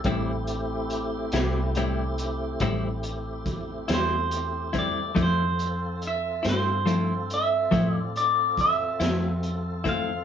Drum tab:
HH |xxxxxxxxxxxx|xxxxxxxxxxxx|
SD |---o-----o--|---o-----o--|
BD |o-----o-o--o|o-----o-o--o|